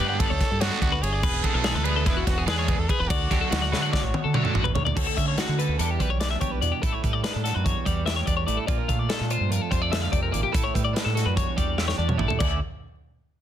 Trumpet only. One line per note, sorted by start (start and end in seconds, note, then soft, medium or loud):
0.00 0.21 G4 loud
0.19 0.62 A4 medium
0.61 0.81 F#4 loud
0.82 1.04 F#4 loud
1.02 1.45 G#4 medium
1.44 1.86 A4 loud
1.84 2.05 B4 medium
2.06 2.28 E4 medium
2.26 2.47 F#4 medium
2.48 2.81 G#4 loud
2.79 2.91 A4 medium
2.89 3.10 B4 medium
3.09 4.55 F#4 medium